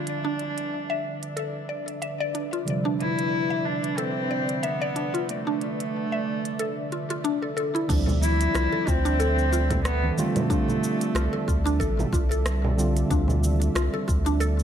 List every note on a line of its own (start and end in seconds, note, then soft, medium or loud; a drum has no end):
0.00 2.63 D3 medium
0.00 14.63 D3 medium
0.00 2.65 F3 medium
0.00 2.64 G3 medium
0.00 2.65 C4 medium
0.00 1.70 D4 medium
0.00 14.63 D4 medium
0.00 0.28 A4 medium
0.00 14.63 D5 medium
0.00 14.63 E5 medium
0.07 9.85 B4 medium
0.07 closed hi-hat soft
0.25 0.38 D4 medium
0.39 closed hi-hat soft
0.58 closed hi-hat soft
0.90 1.35 E5 medium
1.23 closed hi-hat soft
1.37 1.54 A4 medium
1.37 closed hi-hat soft
1.69 1.87 D5 medium
1.88 closed hi-hat soft
2.02 2.19 E5 medium
2.02 closed hi-hat soft
2.20 2.34 D5 loud
2.35 2.52 D4 medium
2.35 closed hi-hat soft
2.53 2.67 F4 medium
2.53 closed hi-hat soft
2.65 7.86 C3 medium
2.65 7.85 D3 medium
2.65 7.85 G3 medium
2.65 closed hi-hat medium
2.69 7.87 F3 medium
2.85 2.99 D4 medium
3.01 3.67 E4 loud
3.01 closed hi-hat soft
3.19 closed hi-hat soft
3.50 3.96 E5 medium
3.65 3.99 D4 medium
3.84 closed hi-hat soft
3.97 4.65 C4 loud
3.97 4.15 A4 medium
3.97 closed hi-hat soft
4.31 4.48 D5 medium
4.49 closed hi-hat soft
4.63 5.30 B3 medium
4.63 4.80 E5 loud
4.63 closed hi-hat medium
4.82 4.95 D5 loud
4.96 5.13 D4 medium
4.96 closed hi-hat soft
5.14 5.28 F4 medium
5.14 closed hi-hat soft
5.29 7.24 A3 medium
5.29 closed hi-hat medium
5.47 5.60 D4 medium
5.61 closed hi-hat soft
5.80 closed hi-hat soft
6.12 6.58 E5 medium
6.45 closed hi-hat soft
6.59 6.76 A4 medium
6.59 closed hi-hat soft
6.92 7.09 F4 medium
6.92 closed hi-hat soft
7.10 7.24 F4 loud
7.10 closed hi-hat soft
7.24 7.42 D4 medium
7.24 closed hi-hat medium
7.42 7.55 A4 medium
7.57 7.73 A4 loud
7.57 closed hi-hat soft
7.75 7.88 E4 loud
7.75 closed hi-hat soft
7.88 8.48 D2 loud
7.88 10.13 D3 medium
7.88 10.14 G3 medium
7.88 10.15 C4 medium
7.88 8.06 D4 loud
7.88 kick loud
7.88 closed hi-hat soft
7.88 crash loud
7.88 cabasa soft
7.92 10.16 F3 medium
8.07 low conga medium
8.07 cabasa soft
8.20 8.89 E4 loud
8.20 14.63 A4 medium
8.20 high conga medium
8.20 cabasa medium
8.41 closed hi-hat medium
8.41 cabasa soft
8.54 8.68 C2 loud
8.54 8.72 F4 medium
8.54 cross-stick loud
8.54 closed hi-hat medium
8.54 cabasa soft
8.72 8.86 A4 medium
8.72 muted conga medium
8.87 10.11 D2 medium
8.87 9.84 C4 loud
8.87 8.97 F4 medium
8.87 kick loud
8.87 cabasa medium
9.05 9.19 D4 loud
9.05 closed hi-hat medium
9.05 cabasa soft
9.20 9.37 A4 loud
9.20 closed hi-hat soft
9.20 cabasa soft
9.39 cabasa soft
9.53 9.63 F4 medium
9.53 cabasa medium
9.70 9.84 A4 medium
9.70 kick loud
9.70 closed hi-hat medium
9.70 low conga medium
9.70 cabasa soft
9.85 10.15 B3 loud
9.85 cross-stick loud
9.85 closed hi-hat soft
9.85 cabasa soft
10.04 high conga medium
10.17 10.38 D3 medium
10.17 10.38 G3 medium
10.17 12.10 A3 loud
10.17 10.39 C4 medium
10.17 10.39 F4 loud
10.17 high conga medium
10.17 cabasa medium
10.36 closed hi-hat medium
10.36 low conga medium
10.36 cabasa soft
10.49 12.75 D3 medium
10.49 12.75 G3 medium
10.49 12.76 C4 medium
10.49 10.67 D4 loud
10.49 12.76 F4 medium
10.49 kick loud
10.49 closed hi-hat soft
10.49 cabasa soft
10.68 low conga medium
10.68 cabasa soft
10.84 cabasa medium
11.01 closed hi-hat medium
11.01 cabasa soft
11.15 11.28 C2 loud
11.15 11.32 F4 medium
11.15 cross-stick loud
11.15 closed hi-hat soft
11.15 cabasa soft
11.33 11.47 A4 medium
11.33 muted conga soft
11.48 11.80 D2 medium
11.48 11.58 F4 medium
11.48 kick loud
11.48 cabasa medium
11.66 11.79 D4 loud
11.66 closed hi-hat medium
11.66 cabasa soft
11.80 12.05 A1 medium
11.80 11.98 A4 loud
11.80 kick medium
11.80 closed hi-hat soft
11.80 cabasa soft
11.99 muted conga medium
11.99 high conga medium
11.99 low conga medium
11.99 cabasa soft
12.13 13.04 C2 medium
12.13 12.23 F4 medium
12.13 kick loud
12.13 cabasa medium
12.31 12.45 A4 medium
12.31 closed hi-hat medium
12.31 cabasa soft
12.46 cross-stick loud
12.46 closed hi-hat soft
12.46 cabasa soft
12.64 low conga medium
12.77 12.98 D3 medium
12.77 12.99 G3 medium
12.77 12.99 C4 medium
12.77 12.99 F4 medium
12.77 cabasa medium
12.97 closed hi-hat medium
12.97 cabasa soft
13.08 13.70 D2 loud
13.08 14.63 D3 medium
13.08 14.63 G3 medium
13.08 14.63 C4 medium
13.08 13.28 D4 loud
13.08 14.63 F4 medium
13.08 kick loud
13.08 closed hi-hat soft
13.08 cabasa medium
13.28 low conga medium
13.28 cabasa soft
13.43 high conga medium
13.43 cabasa medium
13.62 closed hi-hat medium
13.62 cabasa soft
13.75 13.89 C2 loud
13.75 13.93 F4 medium
13.75 cross-stick loud
13.75 closed hi-hat soft
13.75 cabasa soft
13.94 14.08 A4 medium
13.94 muted conga medium
14.08 14.63 D2 medium
14.08 14.19 F4 medium
14.08 kick loud
14.08 cabasa medium
14.26 14.40 D4 loud
14.26 closed hi-hat medium
14.26 cabasa soft
14.40 14.58 A4 loud
14.40 closed hi-hat soft
14.40 cabasa soft
14.59 cabasa soft